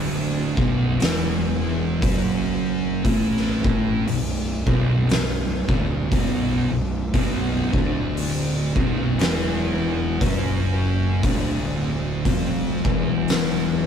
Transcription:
0.00 0.53 D1 medium
0.00 0.55 D2 medium
0.00 0.55 D3 loud
0.57 0.97 B0 loud
0.57 0.99 B1 medium
0.57 0.99 B2 loud
0.57 kick loud
1.00 1.98 E1 loud
1.00 2.01 E2 medium
1.00 2.02 E3 loud
1.00 snare loud
1.00 open hi-hat medium
2.02 3.01 F#1 medium
2.02 3.04 F#2 medium
2.02 3.04 F#3 loud
2.02 kick loud
2.02 open hi-hat medium
3.05 3.61 A1 loud
3.05 3.63 A2 loud
3.05 3.63 A3 loud
3.05 kick loud
3.05 open hi-hat medium
3.37 snare soft
3.64 4.04 A1 loud
3.64 4.06 A2 medium
3.64 4.07 A3 loud
3.64 kick loud
4.07 4.63 B0 medium
4.07 4.55 B1 medium
4.07 open hi-hat medium
4.67 5.07 B0 loud
4.67 5.08 B1 medium
4.67 5.09 B2 loud
4.67 kick loud
5.09 5.65 B0 medium
5.09 5.58 B1 medium
5.09 snare loud
5.09 open hi-hat medium
5.69 6.09 D1 loud
5.69 6.11 D2 loud
5.69 6.11 D3 loud
5.69 kick loud
6.12 6.68 B0 loud
6.12 6.70 B1 medium
6.12 6.71 B2 loud
6.12 kick loud
6.12 open hi-hat medium
6.71 7.11 B0 medium
6.71 7.06 B1 medium
7.13 7.70 B0 loud
7.13 7.72 B1 loud
7.13 7.72 B2 loud
7.13 kick loud
7.13 open hi-hat medium
7.72 8.72 D1 loud
7.72 8.73 D2 medium
7.72 8.74 D3 loud
7.72 kick loud
8.17 open hi-hat medium
8.76 9.16 B0 medium
8.76 9.19 B1 loud
8.76 9.20 B2 loud
8.76 kick loud
9.18 10.17 E1 loud
9.18 10.20 E2 medium
9.18 10.20 E3 loud
9.18 snare loud
9.18 open hi-hat medium
10.21 11.19 F#1 medium
10.21 11.22 F#2 loud
10.21 11.22 F#3 loud
10.21 kick loud
10.21 open hi-hat medium
11.23 12.21 D1 loud
11.23 12.24 D2 medium
11.23 12.24 D3 loud
11.23 kick loud
11.23 open hi-hat medium
12.25 12.81 F1 loud
12.25 12.83 F2 loud
12.25 12.83 F3 loud
12.25 kick loud
12.25 open hi-hat medium
12.84 13.87 E1 medium
12.84 13.87 E2 medium
12.84 13.87 E3 medium
12.84 kick loud
13.28 snare loud
13.28 open hi-hat medium

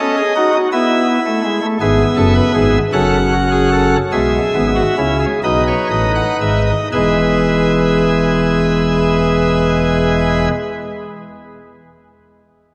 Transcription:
0.00 0.22 C#4 medium
0.00 0.15 A4 medium
0.00 0.56 D#5 medium
0.18 0.33 G#4 loud
0.36 0.58 D#4 medium
0.36 0.51 F#4 loud
0.53 0.69 F#4 medium
0.72 1.18 B3 medium
0.72 1.66 E4 loud
0.72 1.65 E5 medium
1.26 1.41 A3 medium
1.44 1.60 G#3 medium
1.62 1.78 A3 medium
1.81 2.04 G#1 medium
1.81 2.04 G#2 medium
1.81 2.77 B3 medium
1.81 2.03 G#4 loud
1.81 2.78 E5 medium
2.16 2.40 F#1 medium
2.16 2.40 F#2 medium
2.16 2.33 A4 medium
2.36 2.52 B4 loud
2.54 2.78 G#1 medium
2.54 2.79 G#2 medium
2.54 2.78 G#4 loud
2.93 3.96 F#1 medium
2.93 3.96 F#2 medium
2.93 3.96 C#4 medium
2.93 3.17 A4 loud
2.93 3.95 F#5 loud
3.33 3.49 F#4 medium
3.52 3.69 G#4 medium
3.72 3.97 A4 loud
4.12 4.39 B1 medium
4.12 4.38 B2 medium
4.12 4.38 G#3 medium
4.12 4.67 G#4 medium
4.12 5.25 E5 medium
4.55 4.82 G#1 medium
4.55 4.82 G#2 medium
4.55 4.82 B3 medium
4.76 4.95 F#4 medium
4.98 5.26 C#2 medium
4.98 5.26 C#3 medium
4.98 5.26 C#4 medium
4.98 5.17 E4 medium
5.20 5.40 G#4 medium
5.43 5.72 B1 medium
5.43 5.72 B2 medium
5.43 6.70 D#4 medium
5.43 6.70 B4 medium
5.43 5.63 D#5 medium
5.67 5.87 C#5 medium
5.90 6.21 A1 medium
5.90 6.21 A2 medium
5.90 6.11 D#5 medium
6.15 6.36 F#5 medium
6.40 6.72 G#1 medium
6.40 6.72 G#2 medium
6.40 6.62 E5 medium
6.66 6.88 D#5 medium
6.92 10.48 E1 medium
6.92 10.48 E2 medium
6.92 10.51 E3 medium
6.92 10.51 G#3 medium
6.92 10.48 G#4 medium
6.92 10.48 B4 medium
6.92 10.48 E5 medium

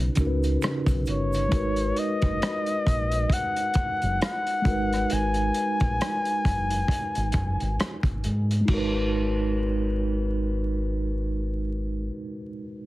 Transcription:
0.00 0.12 C#3 medium
0.00 0.13 C#4 medium
0.00 0.14 D#4 medium
0.00 0.15 F#4 medium
0.00 0.16 B4 medium
0.15 0.55 C#2 medium
0.15 1.51 C#3 medium
0.15 1.52 C#4 soft
0.15 1.49 D#4 soft
0.15 1.51 F#4 soft
0.15 kick medium
0.15 closed hi-hat medium
0.15 shaker soft
0.20 0.26 A#4 soft
0.27 1.55 B4 medium
0.43 closed hi-hat soft
0.43 shaker soft
0.62 finger snap medium
0.62 cross-stick medium
0.62 closed hi-hat medium
0.62 shaker medium
0.86 1.03 B1 medium
0.86 kick medium
0.86 closed hi-hat soft
0.86 shaker soft
1.06 1.45 G1 medium
1.06 2.00 C#5 medium
1.06 closed hi-hat soft
1.06 shaker soft
1.33 closed hi-hat soft
1.33 shaker soft
1.48 4.59 G#3 medium
1.48 4.61 D#4 soft
1.48 kick medium
1.48 closed hi-hat medium
1.53 1.90 G#1 medium
1.53 4.62 F#4 medium
1.53 4.63 A#4 medium
1.57 4.64 B4 medium
1.76 closed hi-hat soft
1.96 3.35 D#5 medium
1.96 closed hi-hat medium
2.22 2.39 F#1 medium
2.22 kick medium
2.22 closed hi-hat soft
2.42 cross-stick loud
2.42 closed hi-hat medium
2.66 closed hi-hat soft
2.87 3.24 A#1 medium
2.87 kick medium
2.87 closed hi-hat medium
3.12 closed hi-hat medium
3.30 4.22 F#5 loud
3.30 kick medium
3.30 closed hi-hat medium
3.56 closed hi-hat soft
3.74 muted fingered electric bass stroke soft
3.74 kick medium
3.74 closed hi-hat medium
4.02 4.18 F#1 medium
4.02 closed hi-hat soft
4.21 5.14 F#5 medium
4.21 cross-stick medium
4.21 closed hi-hat medium
4.47 closed hi-hat soft
4.62 8.18 G#3 medium
4.62 8.19 D#4 medium
4.62 kick medium
4.66 5.03 G#1 medium
4.66 8.20 F#4 medium
4.66 8.21 A#4 medium
4.66 closed hi-hat soft
4.70 8.22 B4 medium
4.93 cross-stick soft
4.93 closed hi-hat soft
5.10 5.48 G#1 medium
5.10 7.80 G#5 medium
5.10 closed hi-hat medium
5.34 closed hi-hat soft
5.54 closed hi-hat medium
5.80 5.97 A#1 medium
5.80 kick medium
5.80 closed hi-hat soft
6.01 cross-stick medium
6.01 closed hi-hat medium
6.25 closed hi-hat soft
6.45 6.82 F#1 medium
6.45 kick medium
6.45 cross-stick soft
6.45 closed hi-hat medium
6.70 closed hi-hat medium
6.88 kick medium
6.88 closed hi-hat medium
7.15 7.32 G#1 medium
7.15 closed hi-hat soft
7.32 7.56 F#1 medium
7.32 kick medium
7.32 closed hi-hat soft
7.60 7.77 G#1 medium
7.60 closed hi-hat soft
7.80 cross-stick medium
7.80 closed hi-hat medium
8.03 8.27 G#1 medium
8.03 kick medium
8.03 closed hi-hat soft
8.24 8.62 G#2 medium
8.24 closed hi-hat soft
8.51 closed hi-hat soft
8.61 12.00 G#3 medium
8.65 12.08 G#1 medium
8.65 12.04 D#4 medium
8.65 kick medium
8.65 crash medium
8.69 12.08 F#4 medium
8.74 12.13 A#4 medium
8.78 12.17 B4 medium

